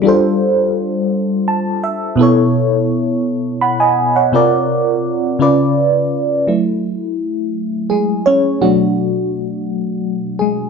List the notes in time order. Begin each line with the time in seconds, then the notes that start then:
0.02 G3 D4 F4
0.07 A4 C5
1.48 A5
1.84 E5
2.16 B2 B3 E4
2.21 A4 C#5
3.61 F#5 B5
3.80 D#5 G#5
4.16 C#5 F#5
4.32 C3 C4 F4 A#4 D5
5.39 C#3 C#4 F4 B4 D5
6.47 F#3 A3 E4
7.90 G#3 G#4
8.26 C#4 C#5
8.61 B2 F#3 A3 D4 F#4
10.39 G#3 G#4